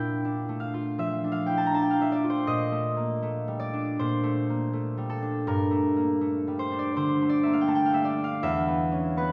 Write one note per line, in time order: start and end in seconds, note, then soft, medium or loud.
0.00 2.46 A#2 medium
0.00 0.23 D4 soft
0.00 0.40 E4 soft
0.00 2.50 A#4 soft
0.00 1.39 G5 loud
0.25 1.23 D4 soft
0.49 1.99 A3 soft
0.60 1.31 F5 medium
0.74 2.23 F4 medium
0.98 4.88 F3 soft
0.98 1.56 E5 medium
1.24 1.73 D4 medium
1.32 1.56 F5 medium
1.46 1.91 E4 soft
1.46 1.65 G5 medium
1.57 1.72 A5 medium
1.66 1.79 A#5 medium
1.74 3.72 D4 medium
1.74 1.87 A5 medium
1.82 1.96 G5 medium
1.90 2.07 F5 medium
2.00 2.71 A3 soft
2.00 2.19 E5 medium
2.12 3.58 D5 medium
2.24 5.51 F4 medium
2.30 2.61 C5 medium
2.47 3.99 A#2 medium
2.47 5.51 D#5 medium
2.72 3.21 A3 soft
2.97 3.39 A#3 soft
3.22 4.22 A3 medium
3.48 4.96 G3 medium
3.60 6.77 D5 medium
3.73 5.21 D4 medium
3.99 5.52 A#2 medium
3.99 5.52 C5 medium
4.23 4.72 A3 medium
4.49 4.91 A#3 soft
4.73 5.70 A3 medium
4.98 6.46 G3 soft
5.10 8.45 A4 medium
5.22 6.71 D4 soft
5.47 8.45 G2 medium
5.47 8.45 A#4 medium
5.71 6.20 A3 medium
5.96 6.40 A#3 soft
6.21 7.20 A3 medium
6.47 7.91 G3 medium
6.59 6.92 C5 medium
6.72 8.16 D4 medium
6.79 7.10 D5 medium
6.96 8.44 D3 medium
6.96 7.53 C5 medium
7.22 7.67 A3 medium
7.29 7.54 D5 medium
7.43 7.86 A#3 soft
7.43 7.62 E5 medium
7.53 7.68 F5 medium
7.61 7.74 G5 medium
7.68 8.44 A3 medium
7.68 7.81 A5 medium
7.75 7.91 G5 medium
7.85 8.02 F5 medium
7.92 9.32 G3 medium
7.92 8.12 E5 medium
8.04 8.45 D5 medium
8.17 8.45 D4 soft
8.24 8.55 F5 medium
8.43 9.32 E2 medium
8.43 9.32 E5 loud
8.68 9.16 B3 medium
8.92 9.32 C#4 soft
9.17 9.32 B3 medium
9.17 9.32 B4 medium